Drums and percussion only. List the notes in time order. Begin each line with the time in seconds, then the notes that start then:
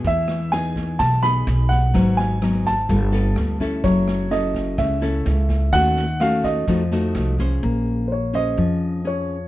0.04 kick, snare
0.28 cross-stick, snare
0.52 snare
0.76 kick, snare
1.00 kick, cross-stick, snare
1.23 snare
1.47 snare
1.71 kick, snare
1.95 kick, cross-stick, snare
2.19 snare
2.42 cross-stick, snare
2.66 kick, snare
2.89 kick, snare
3.13 snare
3.36 cross-stick, snare
3.60 kick, snare
3.84 kick, snare
4.08 cross-stick, snare
4.31 snare
4.55 kick, snare
4.78 kick, cross-stick, snare
5.02 snare
5.26 snare
5.49 kick, snare
5.73 kick, cross-stick, snare
5.96 snare
6.20 cross-stick, snare
6.44 kick, snare
6.68 kick, snare
6.91 snare
7.15 cross-stick, snare
7.39 kick, snare